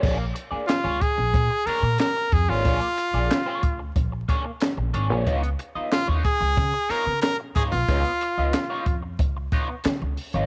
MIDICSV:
0, 0, Header, 1, 7, 480
1, 0, Start_track
1, 0, Tempo, 654308
1, 23, Time_signature, 4, 2, 24, 8
1, 7673, End_track
2, 0, Start_track
2, 0, Title_t, "Trumpet"
2, 0, Program_c, 0, 56
2, 494, Note_on_c, 0, 65, 91
2, 746, Note_on_c, 0, 68, 102
2, 757, Note_off_c, 0, 65, 0
2, 1221, Note_on_c, 0, 70, 104
2, 1232, Note_off_c, 0, 68, 0
2, 1463, Note_off_c, 0, 70, 0
2, 1471, Note_on_c, 0, 70, 101
2, 1709, Note_on_c, 0, 68, 95
2, 1720, Note_off_c, 0, 70, 0
2, 1830, Note_on_c, 0, 65, 98
2, 1841, Note_off_c, 0, 68, 0
2, 2787, Note_off_c, 0, 65, 0
2, 4347, Note_on_c, 0, 65, 94
2, 4455, Note_off_c, 0, 65, 0
2, 4586, Note_on_c, 0, 68, 101
2, 5068, Note_on_c, 0, 70, 98
2, 5079, Note_off_c, 0, 68, 0
2, 5292, Note_off_c, 0, 70, 0
2, 5296, Note_on_c, 0, 70, 102
2, 5406, Note_off_c, 0, 70, 0
2, 5545, Note_on_c, 0, 68, 93
2, 5599, Note_off_c, 0, 68, 0
2, 5664, Note_on_c, 0, 65, 92
2, 6595, Note_off_c, 0, 65, 0
2, 7673, End_track
3, 0, Start_track
3, 0, Title_t, "Clean electric guitar"
3, 0, Program_c, 1, 27
3, 13, Note_on_c, 1, 58, 83
3, 18, Note_on_c, 1, 62, 85
3, 21, Note_on_c, 1, 68, 89
3, 24, Note_on_c, 1, 73, 80
3, 124, Note_off_c, 1, 73, 0
3, 130, Note_off_c, 1, 68, 0
3, 132, Note_off_c, 1, 62, 0
3, 176, Note_off_c, 1, 58, 0
3, 372, Note_on_c, 1, 74, 60
3, 378, Note_on_c, 1, 68, 53
3, 383, Note_on_c, 1, 62, 54
3, 384, Note_on_c, 1, 58, 44
3, 482, Note_off_c, 1, 58, 0
3, 485, Note_off_c, 1, 62, 0
3, 487, Note_off_c, 1, 68, 0
3, 496, Note_off_c, 1, 74, 0
3, 615, Note_on_c, 1, 73, 88
3, 621, Note_on_c, 1, 68, 73
3, 624, Note_on_c, 1, 62, 68
3, 628, Note_on_c, 1, 58, 62
3, 733, Note_off_c, 1, 58, 0
3, 735, Note_off_c, 1, 62, 0
3, 738, Note_off_c, 1, 68, 0
3, 741, Note_off_c, 1, 73, 0
3, 1226, Note_on_c, 1, 58, 78
3, 1231, Note_on_c, 1, 62, 75
3, 1237, Note_on_c, 1, 68, 78
3, 1241, Note_on_c, 1, 73, 79
3, 1342, Note_off_c, 1, 73, 0
3, 1347, Note_off_c, 1, 68, 0
3, 1348, Note_off_c, 1, 62, 0
3, 1383, Note_off_c, 1, 58, 0
3, 1827, Note_on_c, 1, 73, 83
3, 1831, Note_on_c, 1, 68, 81
3, 1836, Note_on_c, 1, 62, 70
3, 1837, Note_on_c, 1, 58, 75
3, 1939, Note_off_c, 1, 58, 0
3, 1942, Note_off_c, 1, 62, 0
3, 1947, Note_off_c, 1, 68, 0
3, 1948, Note_on_c, 1, 58, 84
3, 1950, Note_off_c, 1, 73, 0
3, 1951, Note_on_c, 1, 62, 83
3, 1956, Note_on_c, 1, 68, 98
3, 1958, Note_on_c, 1, 73, 101
3, 2052, Note_off_c, 1, 73, 0
3, 2058, Note_off_c, 1, 68, 0
3, 2059, Note_off_c, 1, 62, 0
3, 2104, Note_off_c, 1, 58, 0
3, 2303, Note_on_c, 1, 74, 57
3, 2308, Note_on_c, 1, 68, 63
3, 2311, Note_on_c, 1, 62, 48
3, 2313, Note_on_c, 1, 58, 49
3, 2415, Note_off_c, 1, 58, 0
3, 2420, Note_off_c, 1, 62, 0
3, 2422, Note_off_c, 1, 68, 0
3, 2427, Note_off_c, 1, 74, 0
3, 2540, Note_on_c, 1, 73, 82
3, 2546, Note_on_c, 1, 68, 73
3, 2550, Note_on_c, 1, 62, 79
3, 2554, Note_on_c, 1, 58, 66
3, 2651, Note_off_c, 1, 58, 0
3, 2657, Note_off_c, 1, 62, 0
3, 2659, Note_off_c, 1, 68, 0
3, 2662, Note_off_c, 1, 73, 0
3, 3142, Note_on_c, 1, 58, 75
3, 3148, Note_on_c, 1, 62, 78
3, 3151, Note_on_c, 1, 68, 83
3, 3152, Note_on_c, 1, 73, 88
3, 3260, Note_off_c, 1, 73, 0
3, 3262, Note_off_c, 1, 68, 0
3, 3269, Note_off_c, 1, 62, 0
3, 3301, Note_off_c, 1, 58, 0
3, 3621, Note_on_c, 1, 58, 52
3, 3621, Note_on_c, 1, 62, 58
3, 3628, Note_on_c, 1, 73, 62
3, 3629, Note_on_c, 1, 68, 64
3, 3736, Note_off_c, 1, 73, 0
3, 3742, Note_off_c, 1, 68, 0
3, 3743, Note_off_c, 1, 62, 0
3, 3745, Note_on_c, 1, 73, 72
3, 3746, Note_off_c, 1, 58, 0
3, 3750, Note_on_c, 1, 68, 66
3, 3752, Note_on_c, 1, 62, 56
3, 3754, Note_on_c, 1, 58, 54
3, 3858, Note_off_c, 1, 58, 0
3, 3861, Note_off_c, 1, 62, 0
3, 3861, Note_off_c, 1, 73, 0
3, 3861, Note_on_c, 1, 59, 84
3, 3864, Note_on_c, 1, 63, 86
3, 3865, Note_off_c, 1, 68, 0
3, 3868, Note_on_c, 1, 65, 96
3, 3870, Note_on_c, 1, 73, 103
3, 3974, Note_off_c, 1, 73, 0
3, 3978, Note_off_c, 1, 65, 0
3, 3981, Note_off_c, 1, 63, 0
3, 4020, Note_off_c, 1, 59, 0
3, 4220, Note_on_c, 1, 75, 60
3, 4223, Note_on_c, 1, 65, 54
3, 4225, Note_on_c, 1, 63, 57
3, 4228, Note_on_c, 1, 59, 49
3, 4328, Note_off_c, 1, 59, 0
3, 4330, Note_off_c, 1, 63, 0
3, 4333, Note_off_c, 1, 65, 0
3, 4342, Note_off_c, 1, 75, 0
3, 4456, Note_on_c, 1, 73, 80
3, 4460, Note_on_c, 1, 65, 69
3, 4463, Note_on_c, 1, 63, 69
3, 4469, Note_on_c, 1, 59, 72
3, 4569, Note_off_c, 1, 59, 0
3, 4572, Note_off_c, 1, 63, 0
3, 4574, Note_off_c, 1, 65, 0
3, 4578, Note_off_c, 1, 73, 0
3, 5057, Note_on_c, 1, 59, 95
3, 5060, Note_on_c, 1, 63, 83
3, 5066, Note_on_c, 1, 65, 103
3, 5069, Note_on_c, 1, 73, 95
3, 5170, Note_off_c, 1, 73, 0
3, 5175, Note_off_c, 1, 65, 0
3, 5176, Note_off_c, 1, 63, 0
3, 5218, Note_off_c, 1, 59, 0
3, 5544, Note_on_c, 1, 59, 66
3, 5550, Note_on_c, 1, 63, 72
3, 5551, Note_on_c, 1, 65, 80
3, 5554, Note_on_c, 1, 73, 80
3, 5663, Note_off_c, 1, 73, 0
3, 5666, Note_off_c, 1, 65, 0
3, 5667, Note_off_c, 1, 63, 0
3, 5702, Note_off_c, 1, 59, 0
3, 5790, Note_on_c, 1, 59, 81
3, 5795, Note_on_c, 1, 63, 80
3, 5798, Note_on_c, 1, 65, 85
3, 5801, Note_on_c, 1, 73, 85
3, 5899, Note_off_c, 1, 73, 0
3, 5902, Note_off_c, 1, 65, 0
3, 5905, Note_off_c, 1, 63, 0
3, 5945, Note_off_c, 1, 59, 0
3, 6148, Note_on_c, 1, 75, 60
3, 6155, Note_on_c, 1, 65, 62
3, 6158, Note_on_c, 1, 63, 54
3, 6159, Note_on_c, 1, 59, 53
3, 6260, Note_off_c, 1, 59, 0
3, 6261, Note_off_c, 1, 63, 0
3, 6265, Note_off_c, 1, 65, 0
3, 6270, Note_off_c, 1, 75, 0
3, 6383, Note_on_c, 1, 73, 87
3, 6386, Note_on_c, 1, 65, 85
3, 6392, Note_on_c, 1, 63, 68
3, 6394, Note_on_c, 1, 59, 68
3, 6497, Note_off_c, 1, 59, 0
3, 6499, Note_off_c, 1, 63, 0
3, 6502, Note_off_c, 1, 65, 0
3, 6503, Note_off_c, 1, 73, 0
3, 6989, Note_on_c, 1, 59, 77
3, 6992, Note_on_c, 1, 63, 83
3, 6998, Note_on_c, 1, 65, 84
3, 7001, Note_on_c, 1, 73, 84
3, 7103, Note_off_c, 1, 73, 0
3, 7108, Note_off_c, 1, 65, 0
3, 7111, Note_off_c, 1, 63, 0
3, 7145, Note_off_c, 1, 59, 0
3, 7587, Note_on_c, 1, 73, 87
3, 7595, Note_on_c, 1, 65, 84
3, 7597, Note_on_c, 1, 63, 77
3, 7600, Note_on_c, 1, 59, 66
3, 7673, Note_off_c, 1, 59, 0
3, 7673, Note_off_c, 1, 63, 0
3, 7673, Note_off_c, 1, 65, 0
3, 7673, Note_off_c, 1, 73, 0
3, 7673, End_track
4, 0, Start_track
4, 0, Title_t, "Upright bass"
4, 0, Program_c, 2, 32
4, 25, Note_on_c, 2, 34, 94
4, 222, Note_off_c, 2, 34, 0
4, 620, Note_on_c, 2, 37, 78
4, 721, Note_off_c, 2, 37, 0
4, 866, Note_on_c, 2, 34, 78
4, 964, Note_off_c, 2, 34, 0
4, 981, Note_on_c, 2, 46, 84
4, 1081, Note_off_c, 2, 46, 0
4, 1339, Note_on_c, 2, 46, 83
4, 1440, Note_off_c, 2, 46, 0
4, 1703, Note_on_c, 2, 41, 91
4, 1802, Note_off_c, 2, 41, 0
4, 1821, Note_on_c, 2, 32, 92
4, 1922, Note_off_c, 2, 32, 0
4, 1942, Note_on_c, 2, 34, 89
4, 2042, Note_off_c, 2, 34, 0
4, 2299, Note_on_c, 2, 34, 86
4, 2400, Note_off_c, 2, 34, 0
4, 2661, Note_on_c, 2, 38, 78
4, 2860, Note_off_c, 2, 38, 0
4, 2902, Note_on_c, 2, 34, 83
4, 3101, Note_off_c, 2, 34, 0
4, 3501, Note_on_c, 2, 34, 78
4, 3602, Note_off_c, 2, 34, 0
4, 3624, Note_on_c, 2, 32, 90
4, 3739, Note_off_c, 2, 32, 0
4, 3739, Note_on_c, 2, 34, 82
4, 3840, Note_off_c, 2, 34, 0
4, 3864, Note_on_c, 2, 37, 92
4, 4062, Note_off_c, 2, 37, 0
4, 4461, Note_on_c, 2, 39, 83
4, 4562, Note_off_c, 2, 39, 0
4, 4699, Note_on_c, 2, 37, 87
4, 4800, Note_off_c, 2, 37, 0
4, 4822, Note_on_c, 2, 49, 104
4, 4922, Note_off_c, 2, 49, 0
4, 5182, Note_on_c, 2, 49, 78
4, 5282, Note_off_c, 2, 49, 0
4, 5545, Note_on_c, 2, 44, 82
4, 5644, Note_off_c, 2, 44, 0
4, 5667, Note_on_c, 2, 35, 85
4, 5765, Note_off_c, 2, 35, 0
4, 5784, Note_on_c, 2, 37, 112
4, 5883, Note_off_c, 2, 37, 0
4, 6145, Note_on_c, 2, 37, 90
4, 6244, Note_off_c, 2, 37, 0
4, 6503, Note_on_c, 2, 41, 81
4, 6702, Note_off_c, 2, 41, 0
4, 6742, Note_on_c, 2, 37, 86
4, 6941, Note_off_c, 2, 37, 0
4, 7227, Note_on_c, 2, 49, 99
4, 7326, Note_off_c, 2, 49, 0
4, 7348, Note_on_c, 2, 37, 80
4, 7446, Note_off_c, 2, 37, 0
4, 7586, Note_on_c, 2, 32, 91
4, 7673, Note_off_c, 2, 32, 0
4, 7673, End_track
5, 0, Start_track
5, 0, Title_t, "Muted clean electric guitar strokes"
5, 132, Note_on_c, 9, 29, 44
5, 206, Note_off_c, 9, 29, 0
5, 249, Note_on_c, 9, 29, 41
5, 323, Note_off_c, 9, 29, 0
5, 491, Note_on_c, 9, 29, 44
5, 564, Note_off_c, 9, 29, 0
5, 742, Note_on_c, 9, 29, 37
5, 815, Note_off_c, 9, 29, 0
5, 863, Note_on_c, 9, 29, 43
5, 937, Note_off_c, 9, 29, 0
5, 986, Note_on_c, 9, 29, 37
5, 1059, Note_off_c, 9, 29, 0
5, 1104, Note_on_c, 9, 29, 38
5, 1178, Note_off_c, 9, 29, 0
5, 1351, Note_on_c, 9, 29, 54
5, 1425, Note_off_c, 9, 29, 0
5, 1468, Note_on_c, 9, 29, 50
5, 1542, Note_off_c, 9, 29, 0
5, 1589, Note_on_c, 9, 29, 39
5, 1662, Note_off_c, 9, 29, 0
5, 2061, Note_on_c, 9, 29, 32
5, 2134, Note_off_c, 9, 29, 0
5, 2183, Note_on_c, 9, 29, 39
5, 2256, Note_off_c, 9, 29, 0
5, 2424, Note_on_c, 9, 29, 47
5, 2498, Note_off_c, 9, 29, 0
5, 2782, Note_on_c, 9, 29, 45
5, 2855, Note_off_c, 9, 29, 0
5, 2906, Note_on_c, 9, 29, 41
5, 2979, Note_off_c, 9, 29, 0
5, 3024, Note_on_c, 9, 29, 36
5, 3097, Note_off_c, 9, 29, 0
5, 3269, Note_on_c, 9, 29, 58
5, 3342, Note_off_c, 9, 29, 0
5, 3386, Note_on_c, 9, 29, 35
5, 3460, Note_off_c, 9, 29, 0
5, 3504, Note_on_c, 9, 29, 56
5, 3578, Note_off_c, 9, 29, 0
5, 3982, Note_on_c, 9, 29, 42
5, 4056, Note_off_c, 9, 29, 0
5, 4102, Note_on_c, 9, 29, 48
5, 4175, Note_off_c, 9, 29, 0
5, 4337, Note_on_c, 9, 29, 36
5, 4410, Note_off_c, 9, 29, 0
5, 4578, Note_on_c, 9, 29, 50
5, 4651, Note_off_c, 9, 29, 0
5, 4699, Note_on_c, 9, 29, 43
5, 4773, Note_off_c, 9, 29, 0
5, 4818, Note_on_c, 9, 29, 32
5, 4891, Note_off_c, 9, 29, 0
5, 4943, Note_on_c, 9, 29, 47
5, 5016, Note_off_c, 9, 29, 0
5, 5179, Note_on_c, 9, 29, 53
5, 5252, Note_off_c, 9, 29, 0
5, 5301, Note_on_c, 9, 29, 35
5, 5375, Note_off_c, 9, 29, 0
5, 5428, Note_on_c, 9, 29, 40
5, 5501, Note_off_c, 9, 29, 0
5, 5672, Note_on_c, 9, 29, 37
5, 5745, Note_off_c, 9, 29, 0
5, 5908, Note_on_c, 9, 29, 39
5, 5981, Note_off_c, 9, 29, 0
5, 6028, Note_on_c, 9, 29, 44
5, 6101, Note_off_c, 9, 29, 0
5, 6268, Note_on_c, 9, 29, 36
5, 6342, Note_off_c, 9, 29, 0
5, 6506, Note_on_c, 9, 29, 38
5, 6580, Note_off_c, 9, 29, 0
5, 6622, Note_on_c, 9, 29, 41
5, 6695, Note_off_c, 9, 29, 0
5, 6747, Note_on_c, 9, 29, 46
5, 6821, Note_off_c, 9, 29, 0
5, 6871, Note_on_c, 9, 29, 45
5, 6945, Note_off_c, 9, 29, 0
5, 7112, Note_on_c, 9, 29, 43
5, 7185, Note_off_c, 9, 29, 0
5, 7232, Note_on_c, 9, 29, 34
5, 7305, Note_off_c, 9, 29, 0
5, 7353, Note_on_c, 9, 29, 40
5, 7427, Note_off_c, 9, 29, 0
5, 7673, End_track
6, 0, Start_track
6, 0, Title_t, "Muted upright bass strokes"
6, 377, Note_on_c, 9, 29, 48
6, 451, Note_off_c, 9, 29, 0
6, 1219, Note_on_c, 9, 29, 48
6, 1292, Note_off_c, 9, 29, 0
6, 4221, Note_on_c, 9, 29, 43
6, 4294, Note_off_c, 9, 29, 0
6, 5061, Note_on_c, 9, 29, 40
6, 5134, Note_off_c, 9, 29, 0
6, 7673, End_track
7, 0, Start_track
7, 0, Title_t, "Drums"
7, 24, Note_on_c, 9, 36, 89
7, 25, Note_on_c, 9, 49, 79
7, 97, Note_off_c, 9, 36, 0
7, 98, Note_off_c, 9, 49, 0
7, 263, Note_on_c, 9, 42, 79
7, 336, Note_off_c, 9, 42, 0
7, 510, Note_on_c, 9, 38, 105
7, 510, Note_on_c, 9, 39, 95
7, 510, Note_on_c, 9, 42, 89
7, 584, Note_off_c, 9, 38, 0
7, 584, Note_off_c, 9, 39, 0
7, 584, Note_off_c, 9, 42, 0
7, 744, Note_on_c, 9, 36, 82
7, 744, Note_on_c, 9, 42, 72
7, 817, Note_off_c, 9, 42, 0
7, 818, Note_off_c, 9, 36, 0
7, 984, Note_on_c, 9, 36, 92
7, 984, Note_on_c, 9, 42, 77
7, 1057, Note_off_c, 9, 36, 0
7, 1058, Note_off_c, 9, 42, 0
7, 1224, Note_on_c, 9, 42, 65
7, 1297, Note_off_c, 9, 42, 0
7, 1455, Note_on_c, 9, 42, 95
7, 1468, Note_on_c, 9, 38, 116
7, 1468, Note_on_c, 9, 39, 81
7, 1528, Note_off_c, 9, 42, 0
7, 1542, Note_off_c, 9, 38, 0
7, 1542, Note_off_c, 9, 39, 0
7, 1702, Note_on_c, 9, 42, 76
7, 1704, Note_on_c, 9, 36, 89
7, 1775, Note_off_c, 9, 42, 0
7, 1778, Note_off_c, 9, 36, 0
7, 1943, Note_on_c, 9, 42, 83
7, 1944, Note_on_c, 9, 36, 89
7, 2017, Note_off_c, 9, 42, 0
7, 2018, Note_off_c, 9, 36, 0
7, 2063, Note_on_c, 9, 42, 52
7, 2136, Note_off_c, 9, 42, 0
7, 2184, Note_on_c, 9, 42, 73
7, 2258, Note_off_c, 9, 42, 0
7, 2430, Note_on_c, 9, 42, 83
7, 2431, Note_on_c, 9, 38, 118
7, 2431, Note_on_c, 9, 39, 94
7, 2504, Note_off_c, 9, 38, 0
7, 2504, Note_off_c, 9, 39, 0
7, 2504, Note_off_c, 9, 42, 0
7, 2661, Note_on_c, 9, 42, 68
7, 2663, Note_on_c, 9, 36, 85
7, 2734, Note_off_c, 9, 42, 0
7, 2736, Note_off_c, 9, 36, 0
7, 2902, Note_on_c, 9, 36, 87
7, 2904, Note_on_c, 9, 42, 80
7, 2976, Note_off_c, 9, 36, 0
7, 2977, Note_off_c, 9, 42, 0
7, 3144, Note_on_c, 9, 36, 83
7, 3146, Note_on_c, 9, 42, 64
7, 3217, Note_off_c, 9, 36, 0
7, 3219, Note_off_c, 9, 42, 0
7, 3378, Note_on_c, 9, 42, 90
7, 3391, Note_on_c, 9, 38, 111
7, 3391, Note_on_c, 9, 39, 95
7, 3451, Note_off_c, 9, 42, 0
7, 3465, Note_off_c, 9, 38, 0
7, 3465, Note_off_c, 9, 39, 0
7, 3624, Note_on_c, 9, 42, 75
7, 3697, Note_off_c, 9, 42, 0
7, 3863, Note_on_c, 9, 36, 81
7, 3865, Note_on_c, 9, 42, 75
7, 3937, Note_off_c, 9, 36, 0
7, 3938, Note_off_c, 9, 42, 0
7, 3986, Note_on_c, 9, 42, 52
7, 4060, Note_off_c, 9, 42, 0
7, 4102, Note_on_c, 9, 42, 70
7, 4176, Note_off_c, 9, 42, 0
7, 4346, Note_on_c, 9, 38, 105
7, 4346, Note_on_c, 9, 39, 81
7, 4346, Note_on_c, 9, 42, 80
7, 4419, Note_off_c, 9, 38, 0
7, 4419, Note_off_c, 9, 39, 0
7, 4419, Note_off_c, 9, 42, 0
7, 4582, Note_on_c, 9, 42, 71
7, 4583, Note_on_c, 9, 36, 85
7, 4655, Note_off_c, 9, 42, 0
7, 4656, Note_off_c, 9, 36, 0
7, 4822, Note_on_c, 9, 36, 89
7, 4823, Note_on_c, 9, 42, 82
7, 4896, Note_off_c, 9, 36, 0
7, 4896, Note_off_c, 9, 42, 0
7, 5063, Note_on_c, 9, 42, 67
7, 5136, Note_off_c, 9, 42, 0
7, 5293, Note_on_c, 9, 42, 84
7, 5306, Note_on_c, 9, 38, 110
7, 5306, Note_on_c, 9, 39, 99
7, 5367, Note_off_c, 9, 42, 0
7, 5380, Note_off_c, 9, 38, 0
7, 5380, Note_off_c, 9, 39, 0
7, 5544, Note_on_c, 9, 36, 88
7, 5544, Note_on_c, 9, 42, 79
7, 5617, Note_off_c, 9, 42, 0
7, 5618, Note_off_c, 9, 36, 0
7, 5785, Note_on_c, 9, 36, 92
7, 5787, Note_on_c, 9, 42, 78
7, 5858, Note_off_c, 9, 36, 0
7, 5860, Note_off_c, 9, 42, 0
7, 5906, Note_on_c, 9, 42, 53
7, 5979, Note_off_c, 9, 42, 0
7, 6025, Note_on_c, 9, 42, 77
7, 6098, Note_off_c, 9, 42, 0
7, 6265, Note_on_c, 9, 38, 107
7, 6265, Note_on_c, 9, 39, 88
7, 6265, Note_on_c, 9, 42, 96
7, 6338, Note_off_c, 9, 38, 0
7, 6338, Note_off_c, 9, 39, 0
7, 6338, Note_off_c, 9, 42, 0
7, 6502, Note_on_c, 9, 42, 71
7, 6503, Note_on_c, 9, 36, 82
7, 6575, Note_off_c, 9, 42, 0
7, 6576, Note_off_c, 9, 36, 0
7, 6743, Note_on_c, 9, 36, 94
7, 6743, Note_on_c, 9, 42, 90
7, 6816, Note_off_c, 9, 42, 0
7, 6817, Note_off_c, 9, 36, 0
7, 6983, Note_on_c, 9, 42, 61
7, 6984, Note_on_c, 9, 36, 95
7, 7057, Note_off_c, 9, 42, 0
7, 7058, Note_off_c, 9, 36, 0
7, 7216, Note_on_c, 9, 42, 86
7, 7230, Note_on_c, 9, 38, 110
7, 7230, Note_on_c, 9, 39, 97
7, 7290, Note_off_c, 9, 42, 0
7, 7303, Note_off_c, 9, 38, 0
7, 7303, Note_off_c, 9, 39, 0
7, 7463, Note_on_c, 9, 46, 75
7, 7536, Note_off_c, 9, 46, 0
7, 7579, Note_on_c, 9, 42, 53
7, 7652, Note_off_c, 9, 42, 0
7, 7673, End_track
0, 0, End_of_file